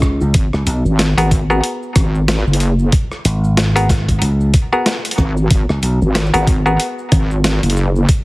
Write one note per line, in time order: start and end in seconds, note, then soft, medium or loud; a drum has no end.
0.00 0.18 C#2 loud
0.00 1.13 B3 medium
0.00 1.13 F#4 medium
0.00 1.13 G#4 medium
0.00 1.13 A#4 loud
0.00 kick medium
0.00 cross-stick medium
0.00 downlifter medium
0.00 shaker medium
0.21 0.32 C#2 loud
0.21 shaker soft
0.34 0.50 G#1 loud
0.34 kick loud
0.34 closed hi-hat medium
0.34 shaker soft
0.53 0.65 C#2 loud
0.53 cross-stick soft
0.53 shaker soft
0.66 0.82 B1 loud
0.66 closed hi-hat medium
0.66 shaker medium
0.85 1.14 G#1 loud
0.85 shaker soft
0.99 snare loud
0.99 closed hi-hat medium
0.99 shaker soft
1.17 1.61 G#1 loud
1.17 1.31 B3 medium
1.17 1.31 F#4 medium
1.17 1.31 G#4 medium
1.17 1.31 A#4 loud
1.17 closed hi-hat medium
1.31 kick loud
1.31 closed hi-hat medium
1.31 shaker medium
1.50 3.71 B3 medium
1.50 3.71 F#4 medium
1.50 3.71 G#4 medium
1.50 3.71 A#4 loud
1.50 shaker soft
1.64 closed hi-hat medium
1.64 shaker soft
1.82 shaker soft
1.96 2.44 G#1 loud
1.96 kick loud
1.96 cross-stick medium
1.96 closed hi-hat medium
1.96 shaker medium
2.15 shaker soft
2.28 snare loud
2.28 closed hi-hat medium
2.28 shaker soft
2.47 2.90 F#1 loud
2.47 shaker soft
2.53 closed hi-hat medium
2.60 closed hi-hat medium
2.60 shaker medium
2.79 shaker soft
2.92 kick loud
2.92 closed hi-hat medium
2.92 shaker soft
3.12 cross-stick soft
3.12 shaker soft
3.25 4.19 G#1 loud
3.25 closed hi-hat medium
3.25 shaker medium
3.44 shaker soft
3.57 snare loud
3.57 closed hi-hat medium
3.57 shaker soft
3.76 3.89 B3 medium
3.76 3.89 F#4 medium
3.76 3.89 G#4 medium
3.76 3.89 A#4 loud
3.76 closed hi-hat medium
3.89 kick loud
3.89 cross-stick soft
3.89 snare medium
3.89 closed hi-hat medium
3.89 shaker medium
4.08 kick medium
4.08 closed hi-hat soft
4.08 shaker soft
4.21 4.52 C#2 loud
4.21 closed hi-hat medium
4.21 shaker soft
4.41 shaker soft
4.54 kick loud
4.54 closed hi-hat medium
4.54 shaker medium
4.72 4.97 B3 medium
4.72 4.97 F#4 medium
4.72 4.97 G#4 medium
4.72 4.97 A#4 loud
4.72 shaker soft
4.86 snare loud
4.86 closed hi-hat medium
4.86 shaker soft
5.05 closed hi-hat soft
5.05 shaker soft
5.11 closed hi-hat medium
5.18 5.48 G#1 loud
5.18 kick medium
5.18 cross-stick soft
5.18 shaker medium
5.37 shaker soft
5.50 5.66 G#1 loud
5.50 kick loud
5.50 closed hi-hat medium
5.50 shaker soft
5.69 5.81 C#2 loud
5.69 cross-stick soft
5.69 shaker soft
5.83 5.99 B1 loud
5.83 closed hi-hat medium
5.83 shaker medium
6.02 6.31 G#1 loud
6.02 shaker soft
6.15 snare loud
6.15 closed hi-hat medium
6.15 shaker soft
6.26 shaker soft
6.34 6.78 G#1 loud
6.34 6.47 B3 medium
6.34 6.47 F#4 medium
6.34 6.47 G#4 medium
6.34 6.47 A#4 loud
6.34 closed hi-hat medium
6.34 shaker soft
6.36 shaker soft
6.47 kick loud
6.47 closed hi-hat medium
6.47 shaker medium
6.66 8.24 B3 medium
6.66 8.24 F#4 medium
6.66 8.24 G#4 medium
6.66 8.24 A#4 loud
6.66 shaker soft
6.80 closed hi-hat medium
6.80 shaker soft
6.99 shaker soft
7.12 7.60 G#1 loud
7.12 kick loud
7.12 cross-stick medium
7.12 closed hi-hat medium
7.12 shaker medium
7.31 shaker soft
7.44 snare loud
7.44 closed hi-hat medium
7.44 shaker soft
7.63 8.06 F#1 loud
7.63 closed hi-hat soft
7.63 shaker soft
7.70 closed hi-hat medium
7.77 shaker medium
7.96 shaker soft
8.09 kick loud
8.09 closed hi-hat medium
8.09 shaker soft